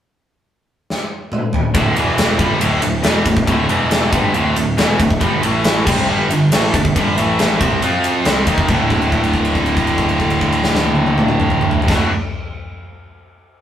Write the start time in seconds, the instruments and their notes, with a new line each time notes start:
0.90 snare
1.32 mid tom
1.53 floor tom
1.74 picked electric bass D1, distorted electric guitar D2 A2 D3, kick, ride
1.95 picked electric bass E1, distorted electric guitar E2 B2 E3, ride
2.18 snare, ride
2.38 picked electric bass G1, distorted electric guitar G2 D3 G3, kick, ride
2.60 picked electric bass D1, distorted electric guitar D2 A2 D3, ride
2.82 picked electric bass D1, distorted electric guitar D2 A2, ride
3.02 picked electric bass E1, distorted electric guitar E2 B2 E3, snare, ride
3.26 picked electric bass D1, distorted electric guitar D2 A2, kick, ride
3.37 kick
3.46 picked electric bass D1, distorted electric guitar D2 A2 D3, kick, ride
3.67 picked electric bass E1, distorted electric guitar E2 B2 E3, ride
3.91 snare, ride
4.11 picked electric bass G1, distorted electric guitar G2 D3 G3, kick, ride
4.33 picked electric bass D1, distorted electric guitar D2 A2 D3, ride
4.56 picked electric bass D1, distorted electric guitar D2 A2, ride
4.77 picked electric bass E1, distorted electric guitar E2 B2 E3, snare, ride
4.99 picked electric bass D1, distorted electric guitar D2 A2, kick, ride
5.11 kick
5.20 picked electric bass G1, distorted electric guitar G2 D3 G3, kick, ride
5.42 picked electric bass A1, distorted electric guitar A2 E3 A3, ride
5.64 snare, ride
5.87 picked electric bass C2, distorted electric guitar C3 G3 C4, kick, crash
6.08 picked electric bass G1, distorted electric guitar G2 D3 G3
6.31 picked electric bass G1, distorted electric guitar G2 D3, ride
6.52 picked electric bass A1, distorted electric guitar A2 E3 A3, snare, ride
6.74 picked electric bass G1, distorted electric guitar G2 D3, kick, ride
6.85 kick
6.96 picked electric bass G1, distorted electric guitar G2 D3 G3, kick, ride
7.18 picked electric bass A1, distorted electric guitar A2 E3 A3, ride
7.39 snare, ride
7.61 picked electric bass C2, distorted electric guitar C3 G3 C4, kick, ride
7.82 picked electric bass F2, distorted electric guitar F3 C4 F4, ride
8.04 ride
8.25 picked electric bass C2, distorted electric guitar C3 G3 C4, snare, ride
8.47 picked electric bass D#2, distorted electric guitar D#3 A#3 D#4, kick, ride
8.58 kick
8.68 picked electric bass D1, distorted electric guitar D2 A2, kick, crash
8.72 distorted electric guitar D3
8.90 kick, crash
9.02 crash
9.12 kick, crash
9.23 crash
9.33 kick, crash
9.45 crash
9.55 kick, crash
9.66 crash
9.77 kick, crash
9.87 crash
9.98 kick, crash
10.09 crash
10.20 kick, crash
10.30 crash
10.41 kick, crash
10.52 crash
10.64 snare
10.75 snare
10.84 high tom
10.95 high tom
11.06 high tom
11.18 mid tom
11.28 mid tom
11.40 mid tom
11.50 mid tom
11.61 mid tom
11.71 floor tom
11.82 floor tom
11.87 picked electric bass D1, distorted electric guitar D2 A2, kick, snare, crash
11.92 distorted electric guitar D3